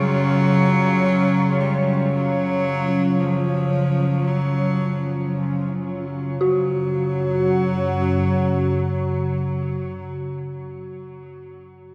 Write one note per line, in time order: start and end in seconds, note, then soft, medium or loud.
0.00 6.39 C#3 medium
0.00 1.61 F#3 loud
0.00 6.40 F#3 medium
0.00 5.87 C#4 medium
0.00 6.42 C#4 medium
0.00 6.45 F4 medium
0.00 6.41 C#5 medium
1.60 2.13 G3 medium
2.14 3.21 F#3 loud
3.20 4.29 F3 medium
4.27 5.34 F#3 medium
6.40 10.15 F#2 medium
6.40 10.14 C#3 medium
6.40 10.16 F#3 medium
6.40 10.15 F#4 soft
6.40 10.17 F#4 medium
6.57 10.32 C#5 medium
6.72 10.47 F#5 medium